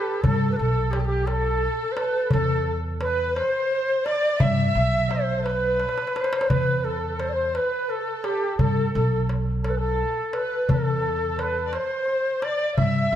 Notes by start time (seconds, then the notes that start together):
Already playing: G4 A4 B4
0.21 G2 A4, darbuka dum
0.26 A4
0.51 B4
0.56 B1 A4, darbuka ka
0.61 A4
0.90 G4, darbuka tek
0.95 G4
1.00 A4
1.04 G4
1.26 A4, darbuka tek
1.63 darbuka ka
1.91 B4 C5
1.97 darbuka tek
2.25 B4
2.30 E2 A4, darbuka dum
2.66 darbuka ka
3.01 B4, darbuka tek
3.34 C5, darbuka tek
3.71 darbuka ka
4.04 D5, darbuka tek
4.39 G2 E5, darbuka dum
4.75 B1, darbuka ka
5.09 C5, darbuka tek
5.39 A4
5.44 B4, darbuka tek
5.80 darbuka tek
5.89 darbuka ka
5.98 darbuka tek
6.07 darbuka ka
6.14 C5, darbuka tek
6.24 darbuka ka
6.33 darbuka tek
6.41 darbuka ka
6.48 E2 B4, darbuka dum
6.84 A4, darbuka ka
6.93 B4
7.00 A4
7.19 C5, darbuka tek
7.28 C5 D5
7.36 C5
7.49 C5
7.54 B4, darbuka tek
7.89 A4, darbuka ka
8.24 G4, darbuka tek
8.58 G2 A4, darbuka dum
8.93 B1 A4, darbuka ka
9.29 darbuka tek
9.63 A4, darbuka tek
9.69 B4
9.77 A4
9.99 darbuka ka
10.33 B4, darbuka tek
10.67 E2 A4, darbuka dum
10.76 A4
10.83 A4
10.90 A4
10.96 A4
11.04 A4, darbuka ka
11.12 A4
11.20 A4
11.38 B4, darbuka tek
11.68 C5 D5
11.73 C5, darbuka tek
11.80 C5
11.85 C5
11.94 C5
12.02 C5
12.08 C5, darbuka ka
12.16 C5
12.23 C5
12.41 D5, darbuka tek
12.76 G2 E5, darbuka dum
12.84 E5
12.92 E5
13.01 E5
13.08 E5
13.12 B1, darbuka ka